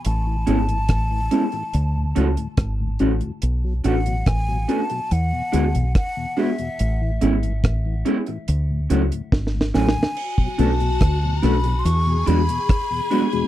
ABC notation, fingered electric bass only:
X:1
M:4/4
L:1/16
Q:1/4=71
K:Bdor
V:1 name="Fingered electric bass" clef=bass
A,,,2 G,,,2 A,,,2 z2 D,,2 C,, z G,,,2 A,,, z | B,,,2 A,,,2 A,,,2 z2 E,, z D,, B,,, z4 | A,,,2 G,,,2 A,,,2 z2 D,,2 C,, z G,,,2 A,,, z | z2 B,,,2 D,,2 B,,,2 E,,2 E,, z4 z |]